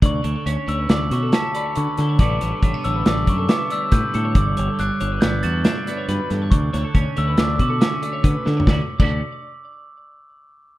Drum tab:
CC |------------------------------------------------------------|------------------------------------------------------------|------------------------------------------------------------|------------------------------------------------------------|
HH |x-----x-----x-----x-----x-----x-----x-----x-----x-----x-----|x-----x-----x-----x-----x-----x-----x-----x-----x-----x-----|x-----x-----x-----x-----x-----x-----x-----x-----x-----x-----|x-----x-----x-----x-----x-----x-----x-----x-----x-----------|
SD |------------------------o-----o-----o-----------------o-----|------o-----------------o-----------o-----------o-----------|------------------------o-----------o-----o-----o-----o-----|------o-----------------o-----------o-----------------o-----|
FT |------------------------------------------------------------|------------------------------------------------------------|------------------------------------------------------------|----------------------------------------------------------o-|
BD |o-----------------------------------------------------------|o-----------o-----------------o-----------------o-----------|o-----------------------------------------------------------|o-----------o-----------------o-----------------o-----------|

CC |---------x--------------------------------------------------|
HH |------------------------------------------------------------|
SD |o-----------------------------------------------------------|
FT |------------------------------------------------------------|
BD |o--------o--------------------------------------------------|